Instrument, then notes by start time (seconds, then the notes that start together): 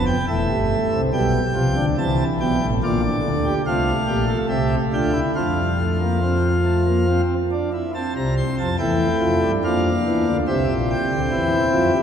pipe organ
Already playing: F1 F2 B3
0.07 G5
0.28 E1 E2 A3 E5
0.49 G1 G2
0.92 C2 C3
1.13 B1 B2 G3 G5
1.55 C2 C3 F3
1.76 D2 D3
1.97 C2 C3 E3 A5
2.40 B1 B2 G5
2.61 A1 A2
2.83 A#1 A#2 D3 F4 D5
3.02 D4
3.23 D2 D3
3.45 G4
3.66 C2 C3 A3 F4 F5
4.07 A#1 A#2 G4
4.28 A4
4.49 C2 C3 G4 E5
4.93 D2 D3 F4 G5
5.13 E4
5.35 F2 F3 A3 F4 F5
5.57 G3
5.79 A3
6.01 A#3
6.22 C4
6.65 A3
6.87 A#3
7.08 C4
7.52 D4
7.73 E4
7.95 C4 A5
8.16 C2 C3 A#5
8.37 C6
8.58 F2 F3 A5
8.79 E2 E3 A3 E4 G5
9.20 F2 F3
9.41 G2 G3
9.64 F2 F3 A#3 D4 F5
10.06 E2 E3
10.27 D2 D3
10.47 C2 C3 C4 G4 E5
10.68 A#1 A#2
10.90 G5
11.11 D2 D3
11.31 E2 E3 E4
11.73 F2 F3
11.93 G2 G3